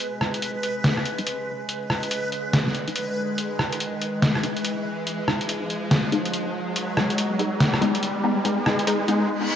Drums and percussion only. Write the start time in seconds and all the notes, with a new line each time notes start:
0.00 closed hi-hat
0.21 cross-stick
0.34 closed hi-hat
0.42 closed hi-hat
0.63 closed hi-hat
0.84 snare, closed hi-hat
0.97 cross-stick
1.05 closed hi-hat
1.18 closed hi-hat
1.27 closed hi-hat
1.69 closed hi-hat
1.90 cross-stick
2.03 closed hi-hat
2.11 closed hi-hat
2.32 closed hi-hat
2.53 cross-stick, snare, closed hi-hat
2.67 snare
2.75 closed hi-hat
2.88 closed hi-hat
2.96 closed hi-hat
3.38 closed hi-hat
3.59 cross-stick
3.73 closed hi-hat
3.80 closed hi-hat
4.02 closed hi-hat
4.22 snare, closed hi-hat
4.35 cross-stick
4.43 closed hi-hat
4.57 closed hi-hat
4.65 closed hi-hat
5.07 closed hi-hat
5.28 cross-stick
5.41 closed hi-hat
5.49 closed hi-hat
5.70 closed hi-hat
5.91 cross-stick, snare, closed hi-hat
6.12 closed hi-hat
6.25 closed hi-hat
6.33 closed hi-hat
6.76 closed hi-hat
6.97 cross-stick
7.10 closed hi-hat
7.18 closed hi-hat
7.39 closed hi-hat
7.60 snare, closed hi-hat
7.74 cross-stick
7.82 closed hi-hat
7.95 closed hi-hat
8.03 closed hi-hat
8.45 closed hi-hat
8.66 cross-stick
8.79 closed hi-hat
8.87 closed hi-hat
9.08 closed hi-hat